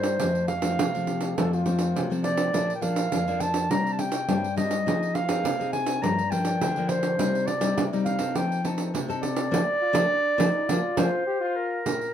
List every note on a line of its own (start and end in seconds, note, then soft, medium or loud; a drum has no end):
0.00 0.18 G2 medium
0.00 0.16 G3 medium
0.00 0.17 A#3 medium
0.00 0.17 D#4 medium
0.00 0.47 C5 medium
0.00 pandeiro medium
0.19 0.76 F2 medium
0.19 0.48 F3 medium
0.19 0.49 A3 soft
0.19 0.49 C4 medium
0.19 pandeiro medium
0.35 pandeiro soft
0.48 1.61 F5 medium
0.48 pandeiro medium
0.62 0.88 F3 medium
0.62 0.88 A3 medium
0.62 0.88 C4 medium
0.62 pandeiro medium
0.79 1.35 C3 medium
0.79 pandeiro medium
0.94 1.33 F3 medium
0.94 1.33 A3 medium
0.94 1.33 C4 medium
0.94 pandeiro soft
1.06 1.38 G4 medium
1.06 pandeiro medium
1.21 pandeiro medium
1.36 1.93 F2 medium
1.36 1.62 F3 medium
1.36 1.62 A3 medium
1.36 1.62 C4 medium
1.36 1.55 A4 loud
1.36 pandeiro medium
1.53 2.11 F4 medium
1.53 pandeiro soft
1.66 2.05 F3 medium
1.66 2.05 A3 medium
1.66 2.05 C4 medium
1.66 pandeiro medium
1.79 pandeiro medium
1.96 2.51 C3 medium
1.96 pandeiro medium
2.10 2.49 F3 medium
2.10 2.50 A3 medium
2.10 2.50 C4 medium
2.10 pandeiro soft
2.24 2.72 D5 loud
2.24 pandeiro medium
2.37 pandeiro medium
2.53 3.09 A#2 medium
2.53 2.71 F3 medium
2.53 2.71 A#3 medium
2.53 2.71 D4 medium
2.53 pandeiro medium
2.70 pandeiro soft
2.75 2.83 G5 medium
2.81 3.07 F3 medium
2.81 3.07 A#3 medium
2.81 3.07 D4 medium
2.81 3.42 F5 loud
2.81 pandeiro medium
2.96 pandeiro medium
3.12 3.68 F2 medium
3.12 3.22 F3 soft
3.12 3.22 A#3 medium
3.12 3.23 D4 medium
3.12 pandeiro medium
3.28 3.66 F3 medium
3.28 3.66 A#3 medium
3.28 3.67 D4 medium
3.28 pandeiro soft
3.40 3.72 A5 medium
3.40 pandeiro medium
3.54 pandeiro medium
3.70 4.26 C3 medium
3.70 4.08 G3 medium
3.70 4.08 C4 soft
3.70 4.08 D4 medium
3.70 3.94 A#5 loud
3.70 pandeiro medium
3.87 pandeiro soft
3.93 4.01 A5 medium
3.99 4.56 G5 loud
3.99 pandeiro medium
4.12 pandeiro medium
4.28 4.84 G2 medium
4.28 4.46 G3 medium
4.28 4.46 C4 medium
4.28 4.46 D4 medium
4.28 pandeiro medium
4.44 pandeiro soft
4.56 4.74 G3 medium
4.56 4.75 C4 soft
4.56 4.75 D4 medium
4.56 5.16 D#5 medium
4.56 pandeiro medium
4.71 pandeiro medium
4.86 5.42 F3 medium
4.86 5.25 C4 medium
4.86 5.26 D#4 medium
4.86 5.26 G#4 medium
4.86 pandeiro medium
5.03 pandeiro soft
5.15 5.72 F5 loud
5.15 pandeiro medium
5.28 5.54 C4 medium
5.28 5.54 D#4 medium
5.28 5.54 G#4 medium
5.28 pandeiro medium
5.44 6.00 C3 medium
5.44 pandeiro medium
5.60 5.99 C4 medium
5.60 5.99 D#4 medium
5.60 5.99 G#4 medium
5.60 pandeiro soft
5.73 6.04 G#5 loud
5.73 pandeiro medium
5.86 pandeiro medium
6.02 6.58 G2 medium
6.02 6.20 F3 medium
6.02 6.20 A#3 medium
6.02 6.20 D4 medium
6.02 6.32 A#5 loud
6.02 pandeiro medium
6.19 pandeiro soft
6.31 6.71 F3 medium
6.31 6.71 A#3 medium
6.31 6.71 D4 medium
6.31 6.91 G5 medium
6.31 pandeiro medium
6.45 pandeiro medium
6.61 7.17 D3 medium
6.61 pandeiro medium
6.76 7.16 F3 medium
6.76 7.16 A#3 medium
6.76 7.16 D4 medium
6.76 pandeiro soft
6.89 7.48 C5 medium
6.89 pandeiro medium
7.03 pandeiro medium
7.19 7.75 C3 medium
7.19 7.47 G3 medium
7.19 7.47 C4 medium
7.19 7.47 D#4 medium
7.19 pandeiro medium
7.35 pandeiro soft
7.46 7.88 D5 medium
7.46 pandeiro medium
7.61 7.87 G3 medium
7.61 7.87 C4 medium
7.61 7.87 D#4 medium
7.61 pandeiro medium
7.78 8.33 C3 medium
7.78 pandeiro medium
7.93 8.17 G3 medium
7.93 8.17 C4 medium
7.93 8.17 D#4 medium
7.93 pandeiro soft
8.05 8.38 F5 medium
8.05 pandeiro medium
8.19 8.59 C4 medium
8.19 8.60 D#4 medium
8.19 8.60 A4 medium
8.19 pandeiro medium
8.35 8.91 F3 medium
8.35 8.65 G5 medium
8.35 pandeiro medium
8.52 pandeiro soft
8.64 8.92 C4 medium
8.64 8.92 D#4 medium
8.64 8.93 A4 medium
8.64 pandeiro medium
8.78 pandeiro medium
8.94 9.49 C3 medium
8.94 pandeiro medium
9.08 9.48 C4 medium
9.08 9.48 D#4 medium
9.08 9.48 A4 medium
9.08 pandeiro soft
9.22 10.93 D5 loud
9.22 pandeiro medium
9.36 pandeiro medium
9.51 9.61 F3 medium
9.51 9.61 A#3 medium
9.51 9.61 D4 medium
9.51 pandeiro loud
9.81 9.96 F4 medium
9.93 10.04 F3 medium
9.93 10.04 A#3 medium
9.93 10.04 D4 medium
9.93 10.40 D4 medium
9.93 pandeiro loud
10.38 10.48 F3 loud
10.38 10.48 A#3 medium
10.38 10.48 D4 medium
10.38 10.71 D#4 medium
10.38 pandeiro loud
10.69 10.79 F3 loud
10.69 10.79 A#3 medium
10.69 10.78 D4 medium
10.69 11.26 F4 loud
10.69 pandeiro medium
10.97 11.07 F3 medium
10.97 11.07 A#3 loud
10.97 11.07 D4 loud
10.97 11.58 C5 medium
10.97 pandeiro loud
11.27 11.40 G4 loud
11.41 11.82 F4 loud
11.56 12.14 A#4 medium
11.86 12.14 A#2 medium
11.86 pandeiro medium
12.01 pandeiro soft